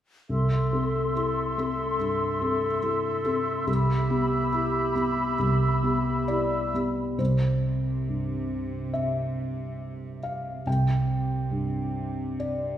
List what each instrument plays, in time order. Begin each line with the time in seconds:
0.29 felt piano C2, clarinet A4, oboe E5, flute section C6
0.73 felt piano C4 A4
1.15 felt piano E4 A4
1.58 felt piano C4 A4
2.00 felt piano G2
2.42 felt piano C4 A4
2.82 felt piano E4 A4
3.25 felt piano C4 A4
3.67 felt piano C2, clarinet G4, oboe E5, flute section B5
4.10 felt piano B3 G4
4.53 felt piano E4 G4
4.95 felt piano B3 G4
5.39 felt piano C2
5.83 felt piano B3 G4
6.28 felt piano E4 G4 D5
6.74 felt piano B3 G4
7.18 felt piano C2 C5, cello section C3
8.08 felt piano G2
8.93 felt piano E5
10.23 felt piano F5
10.66 felt piano C2 G5, cello section C3
11.51 felt piano G2
12.40 felt piano D5